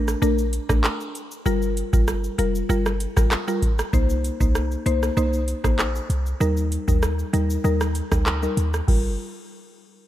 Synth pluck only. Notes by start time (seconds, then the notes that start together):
Already playing: A3 D4 A#4
0.22 A3 D4 A#4
0.69 A3 D4 A#4
1.46 G3 F4 A#4
1.93 G3 F4 A#4
2.38 G3 F4 A#4
2.69 G3 F4 A#4
3.17 G3 F4 A#4
3.48 G3 F4 A#4
3.93 A#3 D#4 C5
4.40 A#3 D#4 C5
4.86 A#3 D#4 C5
5.17 A#3 D#4 C5
5.64 A#3 D#4 C5
6.40 G3 D#4 A#4
6.88 G3 D#4 A#4
7.33 G3 D#4 A#4
7.64 G3 D#4 A#4
8.11 G3 D#4 A#4
8.42 G3 D#4 A#4
8.88 G3 F4 A#4